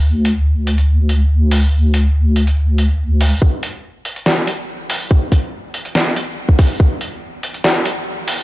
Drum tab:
HH |--x---xx--x---o-|--x---xx--x---o-|--x---xx--x---o-|--x---xx--x---o-|
SD |----------------|----------------|--------o-------|--------o-------|
BD |----------------|----------------|o---------------|o-o----------oo-|

HH |--x---xx--x---o-|
SD |--------o-------|
BD |o---------------|